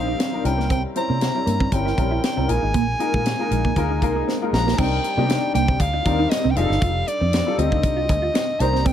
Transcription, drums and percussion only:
0.20 snare loud
0.20 closed hi-hat loud
0.45 closed hi-hat medium
0.60 snare soft
0.70 kick loud
0.70 closed hi-hat medium
0.95 closed hi-hat soft
1.21 snare loud
1.21 closed hi-hat medium
1.47 closed hi-hat medium
1.60 kick medium
1.72 kick loud
1.72 closed hi-hat medium
1.87 snare soft
1.98 kick medium
1.98 closed hi-hat medium
2.23 snare loud
2.23 closed hi-hat loud
2.49 closed hi-hat medium
2.74 kick loud
2.74 closed hi-hat medium
3.00 closed hi-hat medium
3.14 kick loud
3.25 snare loud
3.25 closed hi-hat loud
3.51 closed hi-hat medium
3.65 kick medium
3.76 kick loud
3.76 closed hi-hat medium
4.02 kick medium
4.02 closed hi-hat medium
4.29 snare medium
4.54 snare loud
4.68 snare medium
4.78 kick loud
4.78 crash loud
5.04 closed hi-hat medium
5.29 snare loud
5.29 closed hi-hat medium
5.55 closed hi-hat medium
5.68 kick loud
5.80 kick loud
5.80 closed hi-hat medium
6.06 kick loud
6.06 closed hi-hat medium
6.31 snare loud
6.31 closed hi-hat loud
6.56 closed hi-hat medium
6.72 snare soft
6.82 kick loud
6.82 closed hi-hat medium
7.08 closed hi-hat medium
7.33 snare loud
7.33 closed hi-hat medium
7.59 closed hi-hat medium
7.72 kick medium
7.83 kick loud
7.83 closed hi-hat medium
8.09 kick loud
8.09 closed hi-hat medium
8.35 snare loud
8.35 closed hi-hat loud
8.60 closed hi-hat medium
8.76 snare soft
8.86 kick loud
8.86 closed hi-hat medium

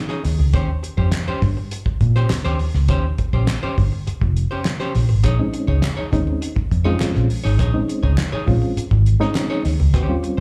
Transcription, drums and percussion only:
0.09 snare soft
0.25 snare soft
0.25 open hi-hat medium
0.54 kick loud
0.54 closed hi-hat loud
0.84 closed hi-hat medium
0.98 kick medium
1.12 snare loud
1.12 clap loud
1.12 closed hi-hat loud
1.42 kick loud
1.42 snare soft
1.42 open hi-hat medium
1.71 closed hi-hat loud
1.86 kick loud
2.01 kick medium
2.01 closed hi-hat medium
2.15 snare soft
2.30 snare loud
2.30 clap medium
2.30 closed hi-hat loud
2.44 snare soft
2.59 open hi-hat medium
2.74 snare soft
2.88 kick loud
2.88 closed hi-hat loud
3.18 kick medium
3.18 closed hi-hat medium
3.33 kick loud
3.47 snare loud
3.47 clap loud
3.47 closed hi-hat loud
3.78 kick loud
3.78 open hi-hat soft
4.07 closed hi-hat medium
4.21 kick loud
4.37 closed hi-hat medium
4.65 snare loud
4.65 clap medium
4.65 closed hi-hat loud
4.80 snare soft
4.95 snare soft
4.95 open hi-hat medium
5.24 kick loud
5.24 closed hi-hat loud
5.54 closed hi-hat medium
5.68 kick medium
5.82 snare loud
5.82 clap loud
5.82 closed hi-hat loud
6.13 kick loud
6.13 snare soft
6.13 closed hi-hat medium
6.42 closed hi-hat medium
6.56 kick loud
6.71 kick medium
6.71 closed hi-hat medium
7.00 snare loud
7.00 clap medium
7.00 closed hi-hat loud
7.15 snare soft
7.30 open hi-hat medium
7.45 snare soft
7.59 kick loud
7.59 closed hi-hat loud
7.89 closed hi-hat medium
8.03 kick loud
8.18 snare loud
8.18 clap loud
8.18 closed hi-hat loud
8.48 kick loud
8.48 open hi-hat soft
8.77 closed hi-hat medium
8.91 kick loud
9.06 closed hi-hat medium
9.22 snare soft
9.35 snare loud
9.35 clap medium
9.35 closed hi-hat loud
9.65 snare soft
9.65 open hi-hat medium
9.94 kick loud
9.94 closed hi-hat loud
10.24 closed hi-hat medium

